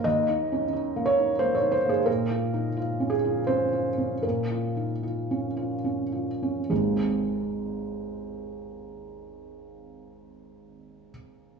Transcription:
\new Staff \with { instrumentName = "Felt piano" } { \time 3/4 \key aes \major \tempo 4 = 74 << { ees''4. des''8 c''16 des''16 c''16 aes'16 | bes'4. aes'8 c''4 | bes'2~ bes'8 r8 | <aes,, ees, aes c' ees' aes'>2.~ |
<aes,, ees, aes c' ees' aes'>2. | } \\ { \tuplet 3/2 { <ees, bes>8 ees'8 des'8 ees'8 bes8 ees'8 bes8 ees'8 bes8 } | \tuplet 3/2 { bes,8 f'8 ees'8 f'8 des'8 f'8 des'8 f'8 des'8 } | \tuplet 3/2 { bes,8 f'8 ees'8 f'8 des'8 f'8 des'8 f'8 des'8 } | r2. |
r2. | } >> }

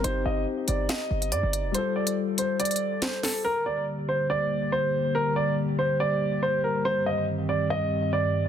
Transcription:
<<
  \new Staff \with { instrumentName = "Grand piano" } { \time 4/4 \key g \minor \tempo 4 = 141 c''8 ees''8 r8 d''8 ees''4 d''4 | c''8 d''8 r8 c''8 d''4 c''8 a'8 | bes'8 d''8 r8 c''8 d''4 c''4 | bes'8 d''8 r8 c''8 d''4 c''8 bes'8 |
c''8 ees''8 r8 d''8 ees''4 d''4 | }
  \new Staff \with { instrumentName = "Grand piano" } { \time 4/4 \key g \minor <c' ees' g'>1 | <g f' a'>1 | r1 | r1 |
r1 | }
  \new Staff \with { instrumentName = "Analog synth pad" } { \clef bass \time 4/4 \key g \minor << { r1 | r1 | <g g'>1~ | <g g'>1~ |
<g g'>1 | } \\ { r1 | r1 | <d bes>1~ | <d bes>1 |
<g, ees c'>1 | } >> }
  \new Staff \with { instrumentName = "808-style bass" } { \clef bass \time 4/4 \key g \minor g,,8 g,,8 r8 g,,8 r8 g,,8 g,16 g,,8 f,,16 | r1 | r1 | r1 |
r1 | }
  \new DrumStaff \with { instrumentName = "Drums" } \drummode { \time 4/4 hh4 r8 hh8 <hh sn>8. hh16 hh8 hh8 | hh8. hh16 r8 hh8 hh32 hh32 hh32 hh8 r32 <hh sn>8 <hho sn>8 | r4 r4 r4 r4 | r4 r4 r4 r4 |
r4 r4 r4 r4 | }
>>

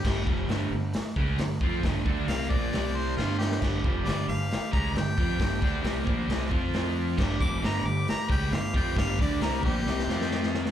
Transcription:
<<
  \new Staff \with { instrumentName = "Harmonica" } { \time 4/4 \key g \mixolydian \tempo 4 = 135 r1 | r4 f''8 d''4 c''8 f'8 g'8 | r4 d''8 f''4 bes''8 g''4~ | g''4 r2. |
r8 d'''8 bes''8 d'''8 bes''8 g''8 f''8 g''8 | f''8 d''8 bes'8 g'2 r8 | }
  \new Staff \with { instrumentName = "Transistor combo organ" } { \time 4/4 \key g \mixolydian r1 | r1 | <g' b' d''>1~ | <g' b' d''>2~ <g' b' d''>8 <f' c'' f''>4. |
<g' b' d''>1~ | <g' b' d''>2~ <g' b' d''>8 <f' c'' f''>4. | }
  \new Staff \with { instrumentName = "Overdriven electric guitar" } { \clef bass \time 4/4 \key g \mixolydian <g, d g>8 <f, c f>8 <g, d g>8 <g, d>8 r8 <cis aes cis'>8 <g, d>8 <f c' f'>8 | <g, d g>8 <d a d'>8 <c g c'>8 <bes, f bes>8 <c g c'>4 <g, d g>4 | <g, d g>8 <f, c f>8 <g, d g>8 <g, d>8 r8 <cis aes cis'>8 <g, d>8 <f c' f'>8 | <g, d g>8 <d a d'>8 <c g c'>8 <bes, f bes>8 <c g c'>8 <f c' f'>4. |
<g, d g>8 <f, c f>8 <g, d g>8 <g, d>8 r8 <cis aes cis'>8 <g, d>8 <f c' f'>8 | <g, d g>8 <d a d'>8 <c g c'>8 <bes, f bes>8 <c g c'>8 <f c' f'>4. | }
  \new Staff \with { instrumentName = "Fingered electric bass" } { \clef bass \time 4/4 \key g \mixolydian g,,8 f,,8 g,,8 g,,8 r8 cis,8 g,,8 f,8 | g,,8 d,8 c,8 bes,,8 c,4 g,,4 | g,,8 f,,8 g,,8 g,,8 r8 cis,8 g,,8 f,8 | g,,8 d,8 c,8 bes,,8 c,8 f,4. |
g,,8 f,,8 g,,8 g,,8 r8 cis,8 g,,8 f,8 | g,,8 d,8 c,8 bes,,8 c,8 f,4. | }
  \new DrumStaff \with { instrumentName = "Drums" } \drummode { \time 4/4 <cymc bd sn>8 bd8 <hho sn>4 <hho sn>8 bd8 <hho sn>8 bd8 | <hho bd sn>8 bd8 <hho sn>8 bd8 <hho sn>4 sn8 sn16 sn16 | <cymc bd sn>8 bd8 <hho sn>4 <hho sn>8 bd8 <hho sn>8 bd8 | <hho bd sn>8 bd8 <hho sn>8 bd8 <hho sn>8 bd8 <hho sn>4 |
<cymc bd sn>8 bd8 <hho sn>4 <hho sn>8 bd8 <hho sn>8 bd8 | <hho bd sn>8 bd8 <hho sn>8 bd8 sn16 sn16 sn16 sn16 sn16 sn16 sn16 sn16 | }
>>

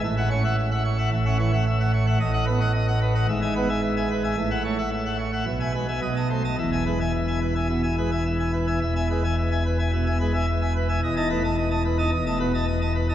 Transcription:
<<
  \new Staff \with { instrumentName = "Pipe organ" } { \time 4/4 \key e \major \tempo 4 = 110 e''16 <e'' fis''>16 cis''16 <e'' fis''>16 e''16 <e'' fis''>16 cis''16 <e'' fis''>16 e''16 <e'' fis''>16 cis''16 <e'' fis''>16 e''16 <e'' fis''>16 cis''16 <e'' fis''>16 | dis''16 <dis'' fis''>16 b'16 <dis'' fis''>16 dis''16 <dis'' fis''>16 b'16 <dis'' fis''>16 e''16 <e'' gis''>16 b'16 <e'' gis''>16 e''16 <e'' gis''>16 b'16 <e'' gis''>16 | e''16 <e'' fis''>16 cis''16 <e'' fis''>16 e''16 <e'' fis''>16 cis''16 <e'' fis''>16 e''16 <e'' gis''>16 b'16 <e'' gis''>16 dis''16 <dis'' a''>16 c''16 <dis'' a''>16 | e''16 <e'' gis''>16 b'16 <e'' gis''>16 e''16 <e'' gis''>16 b'16 <e'' gis''>16 e''16 <e'' gis''>16 b'16 <e'' gis''>16 e''16 <e'' gis''>16 b'16 <e'' gis''>16 |
e''16 <e'' gis''>16 b'16 <e'' gis''>16 e''16 <e'' gis''>16 b'16 <e'' gis''>16 e''16 <e'' gis''>16 b'16 <e'' gis''>16 e''16 <e'' gis''>16 b'16 <e'' gis''>16 | dis''16 <dis'' a''>16 b'16 <dis'' a''>16 dis''16 <dis'' a''>16 b'16 <dis'' a''>16 dis''16 <dis'' a''>16 b'16 <dis'' a''>16 dis''16 <dis'' a''>16 b'16 <dis'' a''>16 | }
  \new Staff \with { instrumentName = "Pipe organ" } { \clef bass \time 4/4 \key e \major << { a,8 cis'16 r4 r16 a,16 cis'16 e16 r4 r16 | a,8 b16 r4 r16 gis,8 b16 r4 r16 | a,8 a16 r4 r16 b,8 gis16 r16 b,8 a16 r16 | e,8 gis16 r4 r16 b,16 r16 gis16 r4 r16 |
e,8 gis16 r4 r16 b,16 r16 gis16 r4 r16 | e,16 dis'16 a16 r4 dis'16 e,16 a16 b,16 r4 dis'16 | } \\ { a,,2 a,,2 | a,,2 gis,,2 | a,,2 b,,4 b,,4 | e,,1 |
e,,1 | e,,2 e,,2 | } >> }
>>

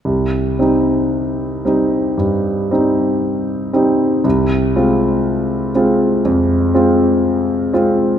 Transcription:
\new Staff \with { instrumentName = "Grand piano" } { \time 4/4 \key c \minor \tempo 4 = 59 c,8 <g c' ees'>4 <g c' ees'>8 g,8 <g c' ees'>4 <g c' ees'>8 | c,8 <aes c' f'>4 <aes c' f'>8 f,8 <aes c' f'>4 <aes c' f'>8 | }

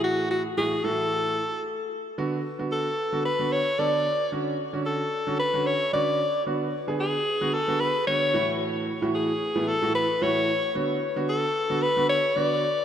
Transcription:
<<
  \new Staff \with { instrumentName = "Alto saxophone" } { \time 4/4 \key b \dorian \tempo 4 = 112 fis'8 fis'8 gis'8 a'4. r4 | r4 a'4 b'8 cis''8 d''4 | r4 a'4 b'8 cis''8 d''4 | r4 gis'4 a'8 b'8 cis''4 |
r4 gis'4 a'8 b'8 cis''4 | r4 a'4 b'8 cis''8 d''4 | }
  \new Staff \with { instrumentName = "Grand piano" } { \time 4/4 \key b \dorian <a, e a fis'>8. r16 <a, e a fis'>16 r16 <a, e a fis'>4 r4. | <d b fis'>16 r8 <d b fis'>8 r8 <d b fis'>16 r16 <d b fis'>16 r8 <d b a'>8 r8 | <d cis' fis'>16 r8 <d cis' fis'>8 r8 <d cis' fis'>16 r16 <d cis' fis'>16 r8 <d cis' fis'>8 r8 | <d b fis'>16 r8 <d b gis'>8 r8 <d b fis'>16 r16 <d b fis'>16 r8 <d b fis'>8 <a, e a fis'>8~ |
<a, e a fis'>8 r16 <a, e a fis'>8 r8 <a, e a b>16 r16 <a, e a fis'>16 r8 <a, e a fis'>8 r8 | <d b fis'>16 r8 <d b fis'>8 r8 <d b fis'>16 r16 <d b fis'>16 r8 <d b fis'>8 r8 | }
>>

